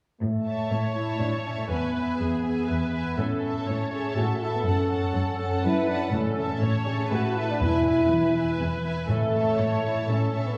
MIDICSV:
0, 0, Header, 1, 7, 480
1, 0, Start_track
1, 0, Key_signature, 3, "major"
1, 0, Tempo, 493827
1, 208, Time_signature, 3, 2, 24, 8
1, 10279, End_track
2, 0, Start_track
2, 0, Title_t, "Violin section"
2, 0, Program_c, 0, 48
2, 446, Note_on_c, 0, 81, 31
2, 920, Note_off_c, 0, 81, 0
2, 931, Note_on_c, 0, 81, 33
2, 1395, Note_off_c, 0, 81, 0
2, 1406, Note_on_c, 0, 81, 30
2, 1641, Note_on_c, 0, 80, 34
2, 1645, Note_off_c, 0, 81, 0
2, 1879, Note_off_c, 0, 80, 0
2, 1891, Note_on_c, 0, 80, 34
2, 2363, Note_off_c, 0, 80, 0
2, 2379, Note_on_c, 0, 80, 31
2, 2839, Note_off_c, 0, 80, 0
2, 2850, Note_on_c, 0, 80, 34
2, 3086, Note_off_c, 0, 80, 0
2, 3345, Note_on_c, 0, 81, 34
2, 3807, Note_off_c, 0, 81, 0
2, 3818, Note_on_c, 0, 81, 37
2, 4279, Note_off_c, 0, 81, 0
2, 4290, Note_on_c, 0, 81, 37
2, 4523, Note_off_c, 0, 81, 0
2, 4535, Note_on_c, 0, 81, 37
2, 4756, Note_off_c, 0, 81, 0
2, 4768, Note_on_c, 0, 81, 39
2, 5235, Note_off_c, 0, 81, 0
2, 5250, Note_on_c, 0, 81, 39
2, 5716, Note_off_c, 0, 81, 0
2, 5734, Note_on_c, 0, 81, 39
2, 5963, Note_off_c, 0, 81, 0
2, 6205, Note_on_c, 0, 81, 43
2, 6672, Note_off_c, 0, 81, 0
2, 6686, Note_on_c, 0, 81, 39
2, 7153, Note_off_c, 0, 81, 0
2, 7170, Note_on_c, 0, 81, 42
2, 7399, Note_off_c, 0, 81, 0
2, 7418, Note_on_c, 0, 80, 50
2, 7632, Note_off_c, 0, 80, 0
2, 7643, Note_on_c, 0, 80, 46
2, 8111, Note_off_c, 0, 80, 0
2, 8131, Note_on_c, 0, 80, 44
2, 8596, Note_off_c, 0, 80, 0
2, 8610, Note_on_c, 0, 80, 45
2, 8841, Note_off_c, 0, 80, 0
2, 9081, Note_on_c, 0, 81, 42
2, 9552, Note_off_c, 0, 81, 0
2, 9570, Note_on_c, 0, 81, 42
2, 10040, Note_off_c, 0, 81, 0
2, 10054, Note_on_c, 0, 81, 36
2, 10279, Note_off_c, 0, 81, 0
2, 10279, End_track
3, 0, Start_track
3, 0, Title_t, "Violin section"
3, 0, Program_c, 1, 48
3, 448, Note_on_c, 1, 73, 32
3, 454, Note_on_c, 1, 76, 31
3, 920, Note_off_c, 1, 76, 0
3, 921, Note_off_c, 1, 73, 0
3, 931, Note_on_c, 1, 76, 32
3, 937, Note_on_c, 1, 73, 31
3, 1403, Note_off_c, 1, 76, 0
3, 1404, Note_off_c, 1, 73, 0
3, 1415, Note_on_c, 1, 73, 34
3, 1415, Note_on_c, 1, 76, 33
3, 1644, Note_off_c, 1, 76, 0
3, 1650, Note_off_c, 1, 73, 0
3, 1656, Note_on_c, 1, 76, 35
3, 1657, Note_on_c, 1, 71, 35
3, 1883, Note_off_c, 1, 76, 0
3, 1885, Note_off_c, 1, 71, 0
3, 1895, Note_on_c, 1, 76, 29
3, 1897, Note_on_c, 1, 71, 30
3, 2355, Note_off_c, 1, 71, 0
3, 2360, Note_off_c, 1, 76, 0
3, 2367, Note_on_c, 1, 71, 33
3, 2372, Note_on_c, 1, 76, 31
3, 2840, Note_off_c, 1, 71, 0
3, 2840, Note_off_c, 1, 76, 0
3, 2851, Note_on_c, 1, 76, 36
3, 2853, Note_on_c, 1, 71, 34
3, 3086, Note_off_c, 1, 76, 0
3, 3087, Note_off_c, 1, 71, 0
3, 3324, Note_on_c, 1, 69, 30
3, 3326, Note_on_c, 1, 76, 32
3, 3791, Note_off_c, 1, 76, 0
3, 3792, Note_off_c, 1, 69, 0
3, 3803, Note_on_c, 1, 76, 36
3, 3804, Note_on_c, 1, 69, 33
3, 4275, Note_off_c, 1, 69, 0
3, 4275, Note_off_c, 1, 76, 0
3, 4295, Note_on_c, 1, 69, 40
3, 4296, Note_on_c, 1, 76, 37
3, 4512, Note_off_c, 1, 69, 0
3, 4523, Note_on_c, 1, 78, 37
3, 4524, Note_on_c, 1, 69, 37
3, 4526, Note_off_c, 1, 76, 0
3, 4758, Note_off_c, 1, 78, 0
3, 4759, Note_off_c, 1, 69, 0
3, 4774, Note_on_c, 1, 78, 35
3, 4778, Note_on_c, 1, 69, 35
3, 5238, Note_off_c, 1, 78, 0
3, 5240, Note_off_c, 1, 69, 0
3, 5253, Note_on_c, 1, 78, 39
3, 5256, Note_on_c, 1, 69, 39
3, 5707, Note_off_c, 1, 69, 0
3, 5712, Note_off_c, 1, 78, 0
3, 5718, Note_on_c, 1, 69, 43
3, 5723, Note_on_c, 1, 78, 44
3, 5955, Note_off_c, 1, 69, 0
3, 5957, Note_off_c, 1, 78, 0
3, 6201, Note_on_c, 1, 76, 40
3, 6202, Note_on_c, 1, 69, 38
3, 6662, Note_off_c, 1, 76, 0
3, 6664, Note_off_c, 1, 69, 0
3, 6674, Note_on_c, 1, 76, 45
3, 6676, Note_on_c, 1, 69, 44
3, 7147, Note_off_c, 1, 76, 0
3, 7148, Note_off_c, 1, 69, 0
3, 7160, Note_on_c, 1, 69, 45
3, 7163, Note_on_c, 1, 76, 45
3, 7390, Note_off_c, 1, 76, 0
3, 7394, Note_off_c, 1, 69, 0
3, 7401, Note_on_c, 1, 76, 49
3, 7403, Note_on_c, 1, 71, 47
3, 7623, Note_off_c, 1, 76, 0
3, 7625, Note_off_c, 1, 71, 0
3, 7635, Note_on_c, 1, 76, 44
3, 7637, Note_on_c, 1, 71, 43
3, 8099, Note_off_c, 1, 76, 0
3, 8106, Note_off_c, 1, 71, 0
3, 8111, Note_on_c, 1, 76, 41
3, 8117, Note_on_c, 1, 71, 47
3, 8586, Note_off_c, 1, 76, 0
3, 8589, Note_off_c, 1, 71, 0
3, 8600, Note_on_c, 1, 71, 48
3, 8600, Note_on_c, 1, 76, 46
3, 8835, Note_off_c, 1, 71, 0
3, 8835, Note_off_c, 1, 76, 0
3, 9085, Note_on_c, 1, 76, 39
3, 9087, Note_on_c, 1, 73, 41
3, 9540, Note_off_c, 1, 73, 0
3, 9540, Note_off_c, 1, 76, 0
3, 9551, Note_on_c, 1, 73, 38
3, 9552, Note_on_c, 1, 76, 39
3, 10026, Note_off_c, 1, 73, 0
3, 10030, Note_off_c, 1, 76, 0
3, 10037, Note_on_c, 1, 73, 39
3, 10040, Note_on_c, 1, 76, 39
3, 10279, Note_off_c, 1, 73, 0
3, 10279, Note_off_c, 1, 76, 0
3, 10279, End_track
4, 0, Start_track
4, 0, Title_t, "Viola section"
4, 0, Program_c, 2, 48
4, 684, Note_on_c, 2, 73, 49
4, 1611, Note_off_c, 2, 73, 0
4, 1655, Note_on_c, 2, 71, 42
4, 2135, Note_off_c, 2, 71, 0
4, 2135, Note_on_c, 2, 68, 40
4, 2604, Note_off_c, 2, 68, 0
4, 2610, Note_on_c, 2, 71, 43
4, 3090, Note_off_c, 2, 71, 0
4, 3091, Note_on_c, 2, 69, 45
4, 3569, Note_off_c, 2, 69, 0
4, 3577, Note_on_c, 2, 73, 47
4, 4052, Note_off_c, 2, 73, 0
4, 4064, Note_on_c, 2, 69, 47
4, 5002, Note_off_c, 2, 69, 0
4, 5014, Note_on_c, 2, 69, 46
4, 5478, Note_off_c, 2, 69, 0
4, 5492, Note_on_c, 2, 71, 52
4, 5956, Note_off_c, 2, 71, 0
4, 5967, Note_on_c, 2, 69, 52
4, 6433, Note_off_c, 2, 69, 0
4, 6440, Note_on_c, 2, 73, 57
4, 6910, Note_off_c, 2, 73, 0
4, 6920, Note_on_c, 2, 71, 55
4, 8801, Note_off_c, 2, 71, 0
4, 8841, Note_on_c, 2, 69, 55
4, 9311, Note_off_c, 2, 69, 0
4, 9311, Note_on_c, 2, 73, 59
4, 9795, Note_on_c, 2, 69, 46
4, 9798, Note_off_c, 2, 73, 0
4, 10276, Note_off_c, 2, 69, 0
4, 10279, End_track
5, 0, Start_track
5, 0, Title_t, "French horn section"
5, 0, Program_c, 3, 60
5, 198, Note_on_c, 3, 57, 50
5, 888, Note_off_c, 3, 57, 0
5, 919, Note_on_c, 3, 64, 47
5, 1150, Note_on_c, 3, 62, 45
5, 1161, Note_off_c, 3, 64, 0
5, 1263, Note_off_c, 3, 62, 0
5, 1392, Note_on_c, 3, 61, 43
5, 1520, Note_off_c, 3, 61, 0
5, 1524, Note_on_c, 3, 57, 38
5, 1580, Note_off_c, 3, 57, 0
5, 1640, Note_on_c, 3, 59, 49
5, 2353, Note_off_c, 3, 59, 0
5, 2364, Note_on_c, 3, 59, 49
5, 3073, Note_off_c, 3, 59, 0
5, 3093, Note_on_c, 3, 61, 54
5, 3795, Note_off_c, 3, 61, 0
5, 3817, Note_on_c, 3, 68, 55
5, 4045, Note_on_c, 3, 66, 49
5, 4048, Note_off_c, 3, 68, 0
5, 4286, Note_off_c, 3, 66, 0
5, 4290, Note_on_c, 3, 64, 52
5, 4409, Note_off_c, 3, 64, 0
5, 4411, Note_on_c, 3, 59, 47
5, 4464, Note_off_c, 3, 59, 0
5, 4526, Note_on_c, 3, 61, 53
5, 5225, Note_off_c, 3, 61, 0
5, 5237, Note_on_c, 3, 61, 60
5, 5475, Note_off_c, 3, 61, 0
5, 5486, Note_on_c, 3, 64, 67
5, 5719, Note_off_c, 3, 64, 0
5, 5721, Note_on_c, 3, 62, 56
5, 5833, Note_on_c, 3, 61, 60
5, 5841, Note_off_c, 3, 62, 0
5, 6675, Note_off_c, 3, 61, 0
5, 6680, Note_on_c, 3, 68, 69
5, 6920, Note_off_c, 3, 68, 0
5, 6925, Note_on_c, 3, 66, 61
5, 7158, Note_on_c, 3, 64, 66
5, 7162, Note_off_c, 3, 66, 0
5, 7278, Note_off_c, 3, 64, 0
5, 7280, Note_on_c, 3, 62, 60
5, 7400, Note_off_c, 3, 62, 0
5, 7400, Note_on_c, 3, 64, 83
5, 8104, Note_off_c, 3, 64, 0
5, 8117, Note_on_c, 3, 64, 61
5, 8353, Note_off_c, 3, 64, 0
5, 8826, Note_on_c, 3, 57, 75
5, 9515, Note_off_c, 3, 57, 0
5, 9556, Note_on_c, 3, 64, 63
5, 9800, Note_off_c, 3, 64, 0
5, 9812, Note_on_c, 3, 61, 59
5, 10038, Note_off_c, 3, 61, 0
5, 10050, Note_on_c, 3, 61, 53
5, 10167, Note_off_c, 3, 61, 0
5, 10167, Note_on_c, 3, 59, 49
5, 10279, Note_off_c, 3, 59, 0
5, 10279, End_track
6, 0, Start_track
6, 0, Title_t, "Cello section"
6, 0, Program_c, 4, 48
6, 211, Note_on_c, 4, 45, 45
6, 614, Note_off_c, 4, 45, 0
6, 684, Note_on_c, 4, 45, 45
6, 1091, Note_off_c, 4, 45, 0
6, 1166, Note_on_c, 4, 45, 42
6, 1572, Note_off_c, 4, 45, 0
6, 1650, Note_on_c, 4, 40, 44
6, 2054, Note_off_c, 4, 40, 0
6, 2134, Note_on_c, 4, 40, 45
6, 2535, Note_off_c, 4, 40, 0
6, 2618, Note_on_c, 4, 40, 46
6, 3017, Note_off_c, 4, 40, 0
6, 3094, Note_on_c, 4, 45, 50
6, 3493, Note_off_c, 4, 45, 0
6, 3573, Note_on_c, 4, 45, 44
6, 3972, Note_off_c, 4, 45, 0
6, 4045, Note_on_c, 4, 45, 49
6, 4447, Note_off_c, 4, 45, 0
6, 4528, Note_on_c, 4, 42, 53
6, 4927, Note_off_c, 4, 42, 0
6, 5000, Note_on_c, 4, 42, 52
6, 5402, Note_off_c, 4, 42, 0
6, 5485, Note_on_c, 4, 42, 54
6, 5885, Note_off_c, 4, 42, 0
6, 5965, Note_on_c, 4, 45, 59
6, 6363, Note_off_c, 4, 45, 0
6, 6436, Note_on_c, 4, 45, 59
6, 6839, Note_off_c, 4, 45, 0
6, 6920, Note_on_c, 4, 45, 58
6, 7321, Note_off_c, 4, 45, 0
6, 7396, Note_on_c, 4, 40, 64
6, 7798, Note_off_c, 4, 40, 0
6, 7873, Note_on_c, 4, 40, 64
6, 8278, Note_off_c, 4, 40, 0
6, 8357, Note_on_c, 4, 40, 61
6, 8760, Note_off_c, 4, 40, 0
6, 8828, Note_on_c, 4, 45, 63
6, 9236, Note_off_c, 4, 45, 0
6, 9317, Note_on_c, 4, 45, 58
6, 9722, Note_off_c, 4, 45, 0
6, 9798, Note_on_c, 4, 45, 51
6, 10207, Note_off_c, 4, 45, 0
6, 10279, End_track
7, 0, Start_track
7, 0, Title_t, "Timpani"
7, 0, Program_c, 5, 47
7, 5955, Note_on_c, 5, 45, 43
7, 6637, Note_off_c, 5, 45, 0
7, 7397, Note_on_c, 5, 40, 47
7, 8078, Note_off_c, 5, 40, 0
7, 8838, Note_on_c, 5, 45, 46
7, 9522, Note_off_c, 5, 45, 0
7, 10279, End_track
0, 0, End_of_file